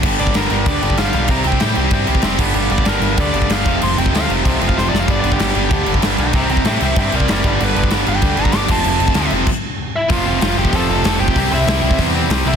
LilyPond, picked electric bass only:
\new Staff \with { instrumentName = "Picked electric bass" } { \clef bass \time 4/4 \key g \mixolydian \tempo 4 = 191 g,,8 g,,8 g,,8 g,,8 d,8 g,,8 g,,8 b,,8 | c,8 c,8 a,8 c,8 g,8 c,8 f,,8 g,,8 | g,,8 g,,8 g,,8 g,,8 d,8 g,,8 g,,8 f,,8 | f,,8 f,,8 d,8 f,,8 c,8 f,,8 f,,8 f,,8 |
g,,8 g,,8 g,,8 g,,8 d,8 g,,8 g,,8 b,,8 | c,8 c,8 a,8 c,8 g,8 c,8 fis,,8 g,,8 | g,,8 g,,8 g,,8 g,,8 d,8 g,,8 g,,8 f,,8 | f,,8 f,,8 d,8 f,,8 r2 |
f,,8 f,,8 f,,8 f,,8 f,,8 f,,8 f,,8 f,,8 | c,8 c,8 c,8 c,8 e,4 c,8 c,8 | }